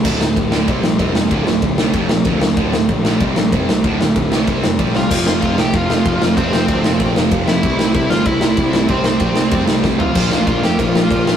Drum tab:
CC |x-------|--------|--------|--------|
RD |--x-x-x-|x-x-x-x-|x-x-x-x-|x-x-x-x-|
SD |-o-o-o-o|-o-o-o-o|-o-o-o-o|-o-o-o-o|
FT |--------|--------|--------|--------|
BD |o-o-o-o-|o-o-o-o-|o-o-o-o-|o-o-o-o-|

CC |x-------|--------|--------|--------|
RD |--x-x-x-|x-x-x-x-|x-x-x-x-|x-x-x---|
SD |-o-o-o-o|-o-o-o-o|-o-o-o-o|-o-o-oo-|
FT |--------|--------|--------|-------o|
BD |o-o-o-o-|o-o-o-o-|o-o-o-o-|o-o-o-o-|

CC |x-------|
RD |--x-x-x-|
SD |-o-o-o-o|
FT |--------|
BD |o-o-o-o-|